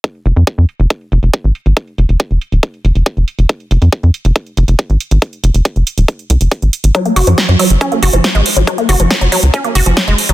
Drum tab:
HH |--xx--xx-xxx-xxx|-xxx-xxx-xxxxxxx|-xxxxxxxxxxxxxxx|xxxxxxxxxxxxxxxx|
SD |----------------|----------------|----------------|----------------|
BD |o---o---o---o---|o---o---o---o---|o---o---o---o---|o---o---o---o---|

HH |xxoxxxoxxxoxxxox|xxoxxxoxxxoxxxox|
SD |----o-------o---|----o-------o---|
BD |o---o---o---o---|o---o---o---o---|